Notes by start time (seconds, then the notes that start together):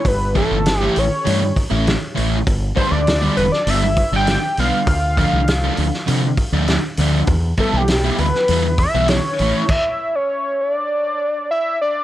0.05 G1 B4, kick, open hi-hat
0.35 E3 A3 C#4 E4 A4, kick, open hi-hat
0.51 G1
0.66 snare, open hi-hat
0.80 E3 A3 C#4 E4 G4
0.96 A1 C#5, open hi-hat
1.25 G2 E3 A3 C#4 E4, open hi-hat
1.41 muted distorted electric guitar stroke
1.56 kick, open hi-hat
1.71 A1 E3 A3 C#4 E4
1.87 snare, open hi-hat
2.15 A1 E3 A3 C#4 E4, open hi-hat
2.47 G1, kick, open hi-hat
2.75 D3 G3 B3 D4 C5, kick, open hi-hat
2.91 D2 D5
3.07 snare, open hi-hat
3.22 D3 G3 B3 D4
3.37 E1 B4, open hi-hat
3.52 D5, snare
3.67 G1 D3 G3 B3 D4 E5, open hi-hat
3.84 muted distorted electric guitar stroke
3.96 kick, open hi-hat
4.12 G1 D3 G3 B3 D4
4.16 G5
4.27 snare, open hi-hat
4.57 B1 D3 G3 B3 D4 F5, open hi-hat
4.87 D2 F5, kick, open hi-hat
5.17 D3 F3 A3 D4, kick, open hi-hat
5.33 C2
5.48 snare, open hi-hat
5.63 D3 F3 A3 D4
5.77 D2, open hi-hat
5.94 snare
6.07 C3 D3 F3 A3 D4, open hi-hat
6.23 muted distorted electric guitar stroke
6.37 kick, open hi-hat
6.52 D2 D3 F3 A3 D4
6.68 snare, open hi-hat
6.97 D2 D3 F3 A3 D4, open hi-hat
7.27 E2, kick, open hi-hat
7.57 E3 G3 B3 E4 A4, kick, open hi-hat
7.73 B1 G4
7.88 snare, open hi-hat
8.04 E3 G3 B3 E4
8.18 D2 B4, open hi-hat
8.35 snare
8.48 E2 E3 G3 B3 E4, open hi-hat
8.66 muted distorted electric guitar stroke
8.78 E5, kick, open hi-hat
8.95 B1 E3 G3 B3 E4
9.08 C#5, snare, open hi-hat
9.39 A1 E3 A3 C#4 E4, open hi-hat
9.69 E5, kick, crash
10.15 C#5
10.61 D5
11.51 E5
11.82 D5